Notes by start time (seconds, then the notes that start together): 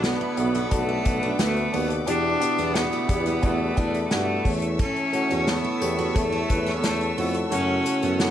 Already playing: B1 B3 D4 F#4 A4 B4 F#5 B5 D6
0.03 B3 D4 F#4 B4, snare, closed hi-hat
0.21 E4
0.37 B1 B3 D4 F#4 B4, closed hi-hat
0.55 F#4, closed hi-hat
0.71 B1 A3 B3 D4 F#4 A4, kick, closed hi-hat
0.89 E4
1.05 B1 B3 D4 F#4 B4, kick, closed hi-hat
1.23 D4, closed hi-hat
1.39 D2 A3 B3 D4 F#4 B4, snare, closed hi-hat
1.57 closed hi-hat
1.73 D#2 B3 D4 F#4 B4, open hi-hat
1.90 closed hi-hat
2.07 E2 B2 G3 B3 D4 E4 G4 E5 B5, closed hi-hat
2.41 B3 D4 E4 G4, closed hi-hat
2.58 E2 B3, closed hi-hat
2.74 B3 D4 E4 F#4, snare, closed hi-hat
2.92 A3, closed hi-hat
3.09 E2 B3 D4 E4 G4, kick, closed hi-hat
3.26 B3, closed hi-hat
3.42 E2 A3 B3 D4 E4 F#4, kick, closed hi-hat
3.77 E2 B3 D4 E4 A4, kick, closed hi-hat
3.94 closed hi-hat
4.10 G2 A3 B3 D4 E4 F#4, snare, closed hi-hat
4.44 E2 E3 A3 C#4 E4 A4 C#6 E6, kick, open hi-hat
4.62 closed hi-hat
4.79 C#4 A4, kick, closed hi-hat
4.96 closed hi-hat
5.12 A3 C#4 E4 F#4, closed hi-hat
5.30 E2 F#4, closed hi-hat
5.46 A3 B3 C#4 E4 A4, snare, closed hi-hat
5.64 E4
5.81 E2 A3 C#4 E4 G4, closed hi-hat
5.99 F#4, closed hi-hat
6.14 E2 A3 C#4 E4 A4, kick, closed hi-hat
6.32 E4, closed hi-hat
6.48 E2 A3 C#4 E4 B4, kick, closed hi-hat
6.66 C#4, snare, closed hi-hat
6.77 B3
6.82 E2 A3 C#4 E4 A4, snare, closed hi-hat
7.01 closed hi-hat
7.17 F2 A3 B3 C#4 E4 F#4, open hi-hat
7.34 closed hi-hat
7.50 F#2 C#3 A3 C#4 E4 F#4 F#5, closed hi-hat
7.85 A3 C#4 E4 F#4, closed hi-hat
8.02 F#2 B3, closed hi-hat
8.18 A3 B3 C#4 E4 F#4, snare, closed hi-hat